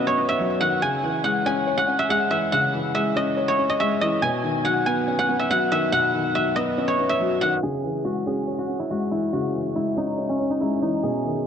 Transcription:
Already playing: grand piano B2 D#3 F#3 B3 C#4, guzheng D#5 F#5
0.07 guzheng C#5
0.18 grand piano B3
0.29 guzheng E5
0.39 grand piano F#3
0.61 grand piano D#3, guzheng F#5
0.82 grand piano C#3, guzheng G#5
1.03 grand piano E3
1.24 grand piano G#3, guzheng F#5
1.46 grand piano C#4, guzheng G#5
1.67 grand piano C#5
1.78 guzheng F#5
1.88 grand piano C#4
1.99 guzheng E5
2.09 grand piano G#3, guzheng F#5
2.31 grand piano E3, guzheng E5
2.52 grand piano C#3, guzheng F#5
2.73 grand piano E3
2.95 grand piano G#3, guzheng E5
3.16 grand piano C#4, guzheng D#5
3.37 grand piano C#5
3.48 guzheng C#5
3.58 grand piano C#4
3.70 guzheng D#5
3.80 grand piano G#3, guzheng E5
4.01 grand piano E3, guzheng D#5
4.22 grand piano B2, guzheng G#5
4.43 grand piano D#3
4.65 grand piano F#3, guzheng F#5
4.86 grand piano B3, guzheng G#5
5.08 grand piano C#4
5.19 guzheng F#5
5.29 grand piano B3
5.39 guzheng E5
5.50 grand piano F#3, guzheng F#5
5.71 grand piano D#3, guzheng E5
5.92 grand piano B2, guzheng F#5
6.14 grand piano D#3
6.35 grand piano F#3, guzheng E5
6.56 grand piano B3, guzheng D#5
6.78 grand piano C#4
6.88 guzheng C#5
6.99 grand piano B3
7.09 guzheng E5
7.20 grand piano F#3
7.41 grand piano D#3, guzheng F#5
7.63 grand piano C#3, guzheng G#4
7.84 grand piano E3
8.05 grand piano G#3, guzheng F#4
8.26 grand piano C#4, guzheng G#4
8.48 grand piano C#5
8.58 guzheng F#4
8.69 grand piano C#4
8.80 guzheng E4
8.90 grand piano G#3, guzheng F#4
9.11 grand piano E3, guzheng E4
9.33 grand piano C#3, guzheng F#4
9.54 grand piano E3
9.75 grand piano G#3, guzheng E4
9.97 grand piano C#4, guzheng D#4
10.18 grand piano C#5
10.29 guzheng C#4
10.39 grand piano C#4
10.50 guzheng D#4
10.60 grand piano G#3, guzheng E4
10.82 grand piano E3, guzheng D#4
11.03 grand piano B2, guzheng G#4
11.24 grand piano D#3

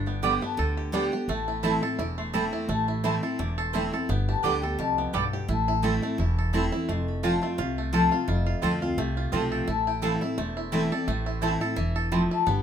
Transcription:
Already playing: upright bass G1, steel-string acoustic guitar G2, five-string banjo D4
0.06 five-string banjo B3, mandolin G5
0.22 steel-string acoustic guitar D3 G3 B3 G4, five-string banjo G3, mandolin B3 G4 D5 G5
0.41 five-string banjo B3, steel-string acoustic guitar B3 G4, mandolin A5
0.57 upright bass D2, steel-string acoustic guitar D3, five-string banjo A4, mandolin G5
0.77 five-string banjo G4
0.92 steel-string acoustic guitar D3 G3 B3 G4, mandolin B3 G4 D5 G5, five-string banjo D4
1.12 steel-string acoustic guitar B3 G4, five-string banjo G4
1.28 upright bass A1, steel-string acoustic guitar A2, five-string banjo A3, mandolin A5
1.48 five-string banjo E4, mandolin B5
1.63 steel-string acoustic guitar E3 A3 C4 E4, mandolin C4 E4 C5 A5 C6, five-string banjo E4
1.82 steel-string acoustic guitar C4 E4, five-string banjo A4
1.99 upright bass E1, steel-string acoustic guitar E2, five-string banjo E4, mandolin D6
2.18 five-string banjo A3, mandolin C6
2.33 steel-string acoustic guitar E3 A3 C4 E4, mandolin C4 E4 C5 A5, five-string banjo A4
2.53 five-string banjo E4
2.69 upright bass A1, steel-string acoustic guitar A2, five-string banjo A3, mandolin A5
2.88 five-string banjo E4, mandolin B5
3.04 steel-string acoustic guitar E3 A3 C4 E4, mandolin C4 E4 C5 A5 C6, five-string banjo E4
3.23 steel-string acoustic guitar C4 E4, five-string banjo A4
3.39 upright bass E1, steel-string acoustic guitar E2, five-string banjo A3, mandolin D6
3.58 five-string banjo A4, mandolin C6
3.73 steel-string acoustic guitar E3 A3 C4 E4, mandolin C4 E4 C5 A5, five-string banjo E4
3.93 steel-string acoustic guitar C4 E4, five-string banjo A4
4.09 upright bass G1, steel-string acoustic guitar G2, five-string banjo B3, mandolin G5
4.28 five-string banjo G4, mandolin A5
4.43 upright bass D2, steel-string acoustic guitar D3 G3 B3 G4, mandolin B3 G4 D5 G5 B5, five-string banjo D4
4.62 steel-string acoustic guitar B3 G4, five-string banjo A4, mandolin B5
4.79 upright bass C2, steel-string acoustic guitar F2, five-string banjo G4, mandolin A5
4.98 five-string banjo B3, mandolin G5
5.13 upright bass B1, steel-string acoustic guitar G2, mandolin B3 G4 D5 F5 G5, five-string banjo A4
5.33 five-string banjo G4, mandolin G5
5.48 upright bass A1, steel-string acoustic guitar A2, five-string banjo E4, mandolin A5
5.68 five-string banjo E4
5.83 steel-string acoustic guitar E3 A3 C4 E4, mandolin C4 E4 C5 A5, five-string banjo A4
6.02 five-string banjo A3, steel-string acoustic guitar C4 E4
6.18 upright bass E1, steel-string acoustic guitar E2, five-string banjo E4
6.39 five-string banjo A4
6.53 steel-string acoustic guitar E3 A3 C4 E4, mandolin C4 E4 C5 A5, five-string banjo E4
6.72 steel-string acoustic guitar C4 E4, five-string banjo E4, mandolin B5
6.89 upright bass F1, steel-string acoustic guitar F2, five-string banjo A3, mandolin C6
7.08 mandolin B5
7.23 steel-string acoustic guitar F3 A3 C4 F4, mandolin C4 F4 C5 A5, five-string banjo F4
7.42 five-string banjo A3, steel-string acoustic guitar C4 F4, mandolin G5
7.58 upright bass C2, steel-string acoustic guitar C3, five-string banjo F4, mandolin F5
7.78 five-string banjo A3
7.93 steel-string acoustic guitar F3 A3 C4 F4, mandolin C4 F4 C5 A5, five-string banjo A4
8.11 steel-string acoustic guitar C4 F4, five-string banjo F4, mandolin F5
8.28 upright bass F1, steel-string acoustic guitar F2, five-string banjo F4, mandolin E5
8.47 five-string banjo F4
8.62 upright bass D2, steel-string acoustic guitar F3 A3 C4 F4, mandolin C4 F4 C5 F5 A5, five-string banjo A4
8.82 steel-string acoustic guitar C4 F4, five-string banjo F4
8.97 upright bass C2, steel-string acoustic guitar C3, five-string banjo A3
9.17 five-string banjo F4
9.32 upright bass B1, steel-string acoustic guitar F3 A3 C4 F4, mandolin C4 F4 C5 A5, five-string banjo F4
9.52 five-string banjo A4, mandolin G5
9.67 upright bass A1, steel-string acoustic guitar A2, five-string banjo E4, mandolin A5
9.87 five-string banjo E4, mandolin G5
10.02 steel-string acoustic guitar E3 A3 C4 E4, mandolin C4 E4 C5 F5 A5, five-string banjo A4
10.21 steel-string acoustic guitar C4 E4, five-string banjo E4, mandolin E5
10.38 upright bass E1, steel-string acoustic guitar E2, five-string banjo A3, mandolin C5
10.57 five-string banjo E4
10.72 steel-string acoustic guitar E3 A3 C4 E4, mandolin C4 E4 C5 E5 A5, five-string banjo E4
10.92 steel-string acoustic guitar C4 E4, five-string banjo A4, mandolin D5
11.07 upright bass A1, steel-string acoustic guitar A2, five-string banjo A3, mandolin C5
11.26 five-string banjo E4
11.42 steel-string acoustic guitar E3 A3 C4 E4, mandolin C4 E4 C5 E5 A5, five-string banjo E4
11.61 steel-string acoustic guitar C4 E4, five-string banjo A4
11.76 upright bass E1, steel-string acoustic guitar E3, five-string banjo E4
11.96 five-string banjo A4
12.12 steel-string acoustic guitar F3, five-string banjo A3, mandolin C4 E4 C5 A5
12.31 five-string banjo E4, mandolin A5
12.46 upright bass G1, steel-string acoustic guitar G3, five-string banjo B3, mandolin B5

